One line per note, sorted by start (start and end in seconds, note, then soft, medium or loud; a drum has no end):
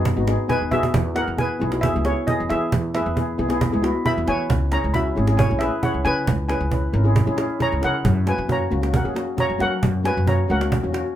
0.00 0.11 F#2 loud
0.00 0.47 F#4 medium
0.00 0.46 D#5 medium
0.05 cajon bass loud
0.16 0.35 G#1 medium
0.16 0.23 B3 medium
0.16 0.23 D#4 medium
0.16 0.24 F#4 medium
0.27 0.41 B3 medium
0.27 0.41 D#4 medium
0.27 0.42 G#4 loud
0.27 cajon slap loud
0.39 cajon slap soft
0.48 0.63 B3 medium
0.48 0.63 D#4 medium
0.48 0.63 G#4 medium
0.48 0.60 B4 medium
0.48 0.59 G#5 loud
0.48 cajon bass medium
0.48 cajon slap medium
0.61 0.70 D#2 medium
0.71 0.90 D#3 medium
0.71 0.94 B3 medium
0.71 0.94 D#4 medium
0.71 0.95 F#4 medium
0.71 1.14 G#4 medium
0.71 1.18 E5 loud
0.71 cajon bass medium
0.83 cajon bass medium
0.94 1.21 E2 loud
0.94 cajon bass loud
1.14 1.29 B3 medium
1.14 1.30 E4 medium
1.14 1.30 G#4 medium
1.14 1.28 A#4 medium
1.14 1.26 F#5 loud
1.14 cajon slap medium
1.27 1.54 E2 medium
1.27 cajon slap soft
1.37 1.52 B3 medium
1.37 1.52 E4 medium
1.37 1.52 G#4 medium
1.37 1.82 B4 medium
1.37 1.85 G#5 loud
1.37 cajon bass medium
1.60 1.88 B1 loud
1.60 1.67 B3 medium
1.60 1.68 E4 medium
1.60 1.68 G#4 medium
1.60 cajon slap soft
1.71 1.85 B3 medium
1.71 1.85 E4 medium
1.71 1.86 F#4 medium
1.71 cajon slap medium
1.81 2.04 G#4 medium
1.81 2.03 E5 loud
1.81 cajon bass loud
1.94 2.13 C#2 medium
1.94 2.01 B3 medium
1.94 2.01 E4 medium
1.94 2.01 G#4 medium
2.05 2.19 B3 medium
2.05 2.19 E4 medium
2.05 2.27 E4 medium
2.05 2.19 G#4 medium
2.05 2.28 C#5 loud
2.05 cajon slap medium
2.17 cajon slap soft
2.27 2.41 B3 medium
2.27 2.41 E4 medium
2.27 2.42 G#4 medium
2.27 2.50 G#4 medium
2.27 2.50 D#5 medium
2.27 cajon bass loud
2.40 2.49 E2 medium
2.49 2.68 E3 loud
2.49 2.76 B3 medium
2.49 2.77 E4 medium
2.49 2.77 G#4 medium
2.49 2.93 G#4 medium
2.49 2.91 E5 loud
2.49 cajon slap medium
2.62 cajon slap soft
2.72 2.99 E2 loud
2.72 cajon bass loud
2.94 3.08 B3 medium
2.94 3.08 E4 medium
2.94 3.80 G#4 medium
2.94 3.08 B4 medium
2.94 3.79 E5 loud
2.94 cajon slap medium
3.06 3.32 E2 medium
3.06 cajon slap soft
3.16 3.30 B3 medium
3.16 3.30 E4 medium
3.16 3.31 G#4 medium
3.16 cajon bass medium
3.38 3.66 B1 loud
3.38 3.45 B3 medium
3.38 3.45 E4 medium
3.38 3.46 G#4 medium
3.38 cajon slap soft
3.49 3.63 B3 loud
3.49 3.63 E4 medium
3.49 3.63 G#4 loud
3.49 cajon slap medium
3.61 cajon bass loud
3.72 3.91 C#2 medium
3.72 3.79 B3 medium
3.72 3.79 E4 medium
3.72 3.79 G#4 medium
3.82 3.96 B3 medium
3.82 3.96 E4 medium
3.82 3.97 F#4 loud
3.82 cajon slap loud
3.95 cajon slap soft
4.05 4.19 B3 medium
4.05 4.19 E4 medium
4.05 4.19 G#4 medium
4.05 4.16 E5 medium
4.05 4.16 B5 loud
4.05 cajon bass medium
4.18 4.26 E2 medium
4.26 4.46 E3 loud
4.26 4.49 B3 medium
4.26 4.50 E4 medium
4.26 4.50 B4 medium
4.26 4.70 C#5 medium
4.26 4.74 G#5 loud
4.26 cajon slap medium
4.39 cajon slap soft
4.50 4.76 C#2 loud
4.50 cajon bass loud
4.71 4.85 C#4 medium
4.71 4.85 E4 medium
4.71 4.86 G#4 medium
4.71 4.94 C#5 medium
4.71 4.95 A#5 loud
4.71 cajon slap loud
4.84 5.10 C#2 medium
4.84 cajon slap soft
4.94 5.07 C#4 medium
4.94 5.08 E4 medium
4.94 5.08 F#4 medium
4.94 5.36 E5 medium
4.94 5.35 B5 medium
4.94 cajon bass medium
5.15 5.44 G#1 loud
5.15 5.23 C#4 medium
5.15 5.23 E4 medium
5.15 5.23 G#4 medium
5.15 cajon slap soft
5.27 5.40 C#4 medium
5.27 5.41 E4 medium
5.27 5.41 G#4 medium
5.27 cajon slap medium
5.37 5.60 C#5 medium
5.37 5.61 G#5 medium
5.37 cajon bass loud
5.49 5.68 A#1 medium
5.49 5.56 C#4 medium
5.49 5.56 E4 medium
5.49 5.56 G#4 medium
5.59 5.74 C#4 medium
5.59 5.74 E4 medium
5.59 5.81 G#4 medium
5.59 5.74 B4 medium
5.59 5.80 E5 medium
5.59 cajon slap loud
5.72 cajon slap soft
5.83 5.96 C#4 medium
5.83 5.96 E4 medium
5.83 5.97 G#4 medium
5.83 6.05 C#5 medium
5.83 6.04 F#5 medium
5.83 cajon bass loud
5.94 6.03 C#2 medium
6.04 6.23 C#3 loud
6.04 6.31 C#4 medium
6.04 6.31 E4 medium
6.04 6.32 B4 medium
6.04 6.47 B4 medium
6.04 6.47 G#5 loud
6.04 cajon slap medium
6.17 cajon slap soft
6.27 6.54 C#2 loud
6.27 cajon bass loud
6.48 6.62 C#4 medium
6.48 6.63 E4 medium
6.48 6.63 G#4 medium
6.48 7.34 B4 medium
6.48 7.34 G#5 medium
6.48 cajon slap loud
6.61 6.87 C#2 medium
6.61 cajon slap soft
6.71 6.85 C#4 medium
6.71 6.85 E4 medium
6.71 6.85 B4 medium
6.71 cajon bass medium
6.93 7.20 G#1 loud
6.93 7.00 C#4 medium
6.93 7.00 E4 medium
6.93 7.00 A#4 medium
7.04 7.17 C#4 medium
7.04 7.18 E4 medium
7.04 7.18 G#4 medium
7.04 cajon slap soft
7.16 cajon bass loud
7.26 7.45 A#1 medium
7.26 7.33 C#4 medium
7.26 7.33 E4 medium
7.26 7.34 G#4 medium
7.37 7.51 C#4 medium
7.37 7.51 E4 medium
7.37 7.51 G#4 loud
7.37 cajon slap loud
7.50 cajon slap soft
7.59 7.73 C#4 medium
7.59 7.73 E4 medium
7.59 7.74 G#4 medium
7.59 7.82 C#5 medium
7.59 7.82 A#5 loud
7.59 cajon bass medium
7.72 7.81 C#2 medium
7.81 8.01 C#3 medium
7.81 8.04 C#4 medium
7.81 8.04 E4 medium
7.81 8.04 G#4 medium
7.81 8.25 A#4 medium
7.81 8.29 F#5 loud
7.81 cajon slap medium
7.94 cajon slap soft
8.05 8.32 F#2 loud
8.05 cajon bass loud
8.26 8.40 A#3 medium
8.26 8.40 C#4 medium
8.26 8.40 F#4 medium
8.26 8.49 B4 medium
8.26 8.50 G#5 loud
8.26 cajon slap medium
8.38 8.65 F#2 loud
8.38 cajon slap soft
8.48 8.62 A#3 medium
8.48 8.62 C#4 medium
8.48 8.62 F#4 medium
8.48 8.92 C#5 medium
8.48 8.96 A#5 loud
8.48 cajon bass medium
8.70 8.98 C#2 loud
8.70 8.78 A#3 medium
8.70 8.78 C#4 medium
8.70 8.78 F#4 medium
8.70 cajon slap soft
8.81 8.95 A#3 medium
8.81 8.96 C#4 medium
8.81 8.96 F#4 medium
8.81 cajon slap medium
8.94 9.16 A#4 medium
8.94 9.16 F#5 medium
8.94 cajon bass loud
9.04 9.23 E2 medium
9.04 9.11 A#3 medium
9.04 9.11 C#4 medium
9.04 9.11 G#4 medium
9.14 9.28 A#3 medium
9.14 9.29 C#4 medium
9.14 9.29 F#4 medium
9.14 cajon slap medium
9.28 cajon slap soft
9.37 9.51 A#3 medium
9.37 9.51 C#4 medium
9.37 9.51 F#4 medium
9.37 9.60 C#5 medium
9.37 9.62 A#5 loud
9.37 cajon bass medium
9.50 9.58 F#2 medium
9.58 9.78 F#3 medium
9.58 9.86 A#3 medium
9.58 9.86 C#4 medium
9.58 9.87 F#4 medium
9.58 10.03 A#4 medium
9.58 10.02 F#5 loud
9.58 cajon slap medium
9.83 10.10 F#2 loud
9.83 cajon bass loud
10.03 10.17 A#3 medium
10.03 10.18 C#4 medium
10.03 10.18 F#4 medium
10.03 10.26 B4 medium
10.03 10.28 G#5 loud
10.03 cajon slap loud
10.17 10.43 F#2 medium
10.17 cajon slap soft
10.26 10.40 A#3 medium
10.26 10.40 C#4 medium
10.26 10.41 F#4 medium
10.26 10.38 C#5 medium
10.26 10.38 A#5 medium
10.26 cajon bass medium
10.48 10.77 C#2 loud
10.48 10.55 A#3 medium
10.48 10.56 C#4 medium
10.48 10.56 F#4 medium
10.48 10.92 A#4 medium
10.48 10.92 F#5 medium
10.48 cajon slap soft
10.60 10.74 A#3 medium
10.60 10.74 C#4 medium
10.60 10.74 F#4 medium
10.60 cajon slap medium
10.72 cajon bass loud
10.82 11.01 E2 medium
10.82 10.89 A#3 medium
10.82 10.89 C#4 medium
10.82 10.90 F#4 medium
10.92 11.07 A#3 medium
10.92 11.07 C#4 medium
10.92 11.07 F#4 medium
10.92 cajon slap loud
11.06 cajon slap soft